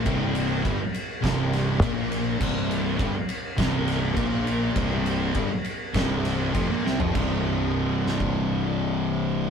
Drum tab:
CC |----------------|x---------------|----------------|x---------------|
RD |x-x-x-x-x-x-x-x-|--x-x-x-x-x-x-x-|x-x-x-x-x-x-x---|----------------|
SD |--------o-o-----|--------o-o-----|--------o-o---o-|------o---------|
FT |----------------|----------------|---------------o|----------------|
BD |o---o---o---o---|o---o---o---o---|o---o---o---o---|o------o--------|